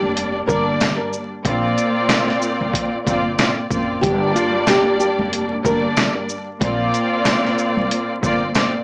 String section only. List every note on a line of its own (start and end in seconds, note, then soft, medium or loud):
0.00 0.37 G2 loud
0.00 0.37 G3 loud
0.00 0.38 A#3 loud
0.00 0.38 D4 loud
0.00 0.38 D5 loud
0.47 1.23 G2 loud
0.47 1.23 G3 medium
0.47 1.23 A#3 loud
0.47 1.23 D4 loud
0.47 1.24 D5 loud
1.45 2.95 A#2 loud
1.45 2.95 A#3 loud
1.45 2.95 C4 loud
1.45 2.95 F4 loud
1.45 2.96 D5 loud
3.05 3.36 A#2 loud
3.05 3.36 A#3 loud
3.05 3.36 C4 medium
3.05 3.36 F4 medium
3.05 3.36 D5 loud
3.38 3.68 A#2 medium
3.38 3.68 A#3 medium
3.38 3.68 C4 medium
3.38 3.68 F4 medium
3.38 3.69 D5 medium
3.69 4.00 A#2 medium
3.69 4.00 A#3 medium
3.69 4.00 C4 medium
3.69 4.00 F4 medium
3.69 4.01 D5 medium
4.04 5.54 G2 loud
4.04 5.54 G3 loud
4.04 5.54 A#3 loud
4.04 5.54 D4 loud
4.04 5.54 D5 loud
5.63 6.39 G2 loud
5.63 6.39 G3 medium
5.63 6.39 A#3 medium
5.63 6.40 D4 medium
5.63 6.40 D5 loud
6.61 8.11 A#2 loud
6.61 8.11 A#3 medium
6.61 8.11 C4 loud
6.61 8.11 F4 loud
6.61 8.12 D5 loud
8.21 8.52 A#2 loud
8.21 8.52 A#3 loud
8.21 8.52 C4 medium
8.21 8.52 F4 medium
8.21 8.52 D5 loud
8.54 8.84 A#2 medium
8.54 8.84 A#3 medium
8.54 8.84 C4 medium
8.54 8.84 F4 medium
8.54 8.84 D5 medium